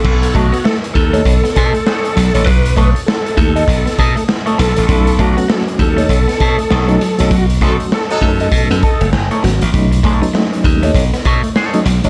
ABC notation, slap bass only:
X:1
M:4/4
L:1/16
Q:"Swing 16ths" 1/4=99
K:Bmix
V:1 name="Slap bass" clef=bass
B,,,2 B,,, z3 D,,2 B,,, z B,, z3 B,,, A,,, | B,,,2 B,,, z3 D,,2 B,,, z B,, z3 B,,, A,,, | B,,,2 B,,, z3 D,,2 B,,, z B,, z B,,,2 z B,,, | B,,,2 B,,, z3 F,,2 B,, F,, z F,,, F,,, z G,,, A,,, |
B,,,2 B,,, z3 D,,2 B,,, z B,, z3 B,,, A,,, |]